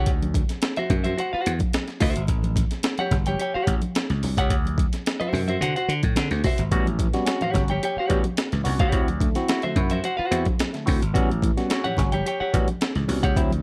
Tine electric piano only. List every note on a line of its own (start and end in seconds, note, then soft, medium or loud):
6.71 6.85 G3 loud
6.71 6.86 B3 medium
6.71 6.86 C#4 medium
6.71 6.86 F#4 loud
6.99 7.13 A2 medium
6.99 7.13 E3 medium
7.14 7.26 G3 medium
7.14 7.26 B3 medium
7.14 7.24 C#4 medium
7.14 7.25 F#4 medium
7.26 7.40 C#4 medium
7.26 7.41 F#4 medium
7.41 7.54 A2 medium
7.41 7.54 E3 medium
7.54 7.68 C#4 medium
7.54 7.69 F#4 medium
8.09 8.24 G3 loud
8.09 8.24 B3 medium
8.09 8.24 C#4 medium
8.09 8.24 F#4 loud
8.37 8.44 C#4 soft
8.37 8.44 F#4 soft
8.52 8.65 A2 medium
8.52 8.65 E3 medium
8.64 8.79 G3 medium
8.64 8.79 B3 medium
8.64 8.79 C#4 medium
8.64 8.79 F#4 medium
8.92 9.07 C4 medium
8.92 9.07 E4 medium
8.92 9.07 F#4 loud
9.21 9.35 D3 medium
9.21 9.35 A3 medium
9.35 9.48 C4 medium
9.35 9.47 E4 medium
9.35 9.48 F#4 loud
9.48 9.63 E4 medium
9.48 9.63 F#4 medium
9.64 9.76 D3 medium
9.64 9.76 A3 medium
9.76 9.90 E4 medium
9.76 9.91 F#4 medium
10.31 10.45 C4 medium
10.31 10.46 E4 medium
10.31 10.46 F#4 loud
10.58 10.65 E4 soft
10.58 10.65 F#4 soft
10.73 10.86 D3 medium
10.73 10.86 A3 medium
10.86 11.00 C4 medium
10.86 11.01 E4 medium
10.86 11.01 F#4 medium
11.14 11.28 G3 loud
11.14 11.28 B3 loud
11.14 11.29 C#4 loud
11.14 11.29 F#4 loud
11.42 11.56 A2 medium
11.42 11.56 E3 medium
11.57 11.70 G3 medium
11.57 11.70 B3 medium
11.57 11.68 C#4 medium
11.57 11.69 F#4 medium
11.69 11.84 C#4 medium
11.69 11.84 F#4 medium
11.85 11.98 A2 medium
11.85 11.97 E3 medium
11.98 12.12 C#4 medium
11.98 12.12 F#4 medium
12.53 12.67 G3 medium
12.53 12.67 B3 medium
12.53 12.67 C#4 medium
12.53 12.68 F#4 loud
12.81 12.87 C#4 soft
12.81 12.87 F#4 soft
12.95 13.08 A2 medium
12.95 13.08 E3 medium
13.08 13.23 G3 medium
13.08 13.22 B3 medium
13.08 13.23 C#4 medium
13.08 13.23 F#4 medium
13.36 13.50 F#3 medium
13.36 13.51 C4 loud
13.36 13.51 E4 loud